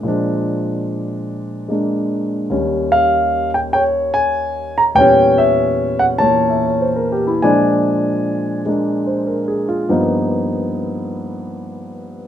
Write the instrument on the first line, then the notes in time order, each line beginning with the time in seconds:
grand piano
0.03 A#2 F3 G#3
0.08 D4
1.68 G#3 A#3 D4
2.50 D#2 D#3 G3 C#4
2.92 F5
3.54 G5
3.73 C#5 G5
4.14 G#5
4.78 A#5
4.95 E2 A#2 G3 C#5 G5
5.00 C#4
5.38 E5
5.99 F#5
6.18 A#2 E3 A#3 C#5 A5
6.50 E5
6.66 C#5
6.81 C5
6.96 A#4
7.12 G4
7.27 E4
7.42 A#2 F3 G#3 D4 D5 G#5
8.66 G#3 A#3 D4
9.07 C5
9.27 A#4
9.48 G#4
9.69 F4
9.89 G2 F3 A#3 B3 D#4